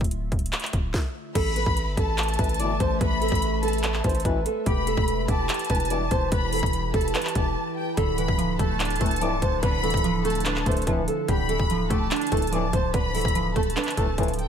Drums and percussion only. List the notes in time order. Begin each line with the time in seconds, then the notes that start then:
0.01 kick, closed hi-hat
0.11 closed hi-hat
0.32 kick, closed hi-hat
0.39 closed hi-hat
0.46 closed hi-hat
0.53 clap, closed hi-hat
0.60 clap, closed hi-hat
0.66 closed hi-hat
0.73 kick, closed hi-hat
0.94 kick, snare
1.35 kick, closed hi-hat, crash
1.56 closed hi-hat
1.66 kick
1.77 closed hi-hat
1.97 kick, closed hi-hat
2.18 clap, closed hi-hat
2.23 closed hi-hat
2.29 closed hi-hat
2.34 closed hi-hat
2.39 kick, closed hi-hat
2.44 closed hi-hat
2.49 closed hi-hat
2.54 closed hi-hat
2.60 closed hi-hat
2.80 kick, closed hi-hat
3.01 kick, closed hi-hat
3.22 closed hi-hat
3.28 kick, closed hi-hat
3.35 closed hi-hat
3.42 closed hi-hat
3.63 closed hi-hat
3.68 closed hi-hat
3.73 closed hi-hat
3.78 closed hi-hat
3.84 clap, closed hi-hat
3.94 clap
4.04 kick, closed hi-hat
4.09 closed hi-hat
4.15 closed hi-hat
4.20 closed hi-hat
4.25 kick, closed hi-hat
4.46 closed hi-hat
4.66 kick, closed hi-hat
4.87 closed hi-hat
4.97 kick
5.08 closed hi-hat
5.28 kick, closed hi-hat
5.49 clap, closed hi-hat
5.54 closed hi-hat
5.59 closed hi-hat
5.65 closed hi-hat
5.70 kick, closed hi-hat
5.75 closed hi-hat
5.80 closed hi-hat
5.85 closed hi-hat
5.90 closed hi-hat
6.11 kick, closed hi-hat
6.32 kick, closed hi-hat
6.53 closed hi-hat, open hi-hat
6.59 kick, closed hi-hat
6.66 closed hi-hat
6.73 closed hi-hat
6.94 kick, closed hi-hat
7.01 closed hi-hat
7.08 closed hi-hat
7.15 clap, closed hi-hat
7.22 clap, closed hi-hat
7.28 closed hi-hat
7.35 kick, closed hi-hat
7.97 kick, closed hi-hat
8.18 closed hi-hat
8.28 kick
8.39 closed hi-hat
8.59 kick, closed hi-hat
8.80 clap, closed hi-hat
8.85 closed hi-hat
8.90 closed hi-hat
8.96 closed hi-hat
9.01 kick, closed hi-hat
9.06 closed hi-hat
9.11 closed hi-hat
9.16 closed hi-hat
9.21 closed hi-hat
9.42 kick, closed hi-hat
9.63 kick, closed hi-hat
9.84 closed hi-hat
9.90 kick, closed hi-hat
9.97 closed hi-hat
10.04 closed hi-hat
10.25 closed hi-hat
10.30 closed hi-hat
10.35 closed hi-hat
10.40 closed hi-hat
10.45 clap, closed hi-hat
10.56 clap
10.66 kick, closed hi-hat
10.72 closed hi-hat
10.77 closed hi-hat
10.82 closed hi-hat
10.87 kick, closed hi-hat
11.08 closed hi-hat
11.28 kick, closed hi-hat
11.49 closed hi-hat
11.59 kick
11.70 closed hi-hat
11.90 kick, closed hi-hat
12.11 clap, closed hi-hat
12.16 closed hi-hat
12.21 closed hi-hat
12.27 closed hi-hat
12.32 kick, closed hi-hat
12.37 closed hi-hat
12.42 closed hi-hat
12.47 closed hi-hat
12.53 closed hi-hat
12.73 kick, closed hi-hat
12.94 kick, closed hi-hat
13.15 closed hi-hat, open hi-hat
13.21 kick, closed hi-hat
13.28 closed hi-hat
13.35 closed hi-hat
13.56 kick, closed hi-hat
13.63 closed hi-hat
13.70 closed hi-hat
13.77 clap, closed hi-hat
13.84 clap, closed hi-hat
13.91 closed hi-hat
13.97 kick, closed hi-hat
14.18 kick, closed hi-hat
14.23 closed hi-hat
14.28 closed hi-hat
14.34 closed hi-hat
14.39 closed hi-hat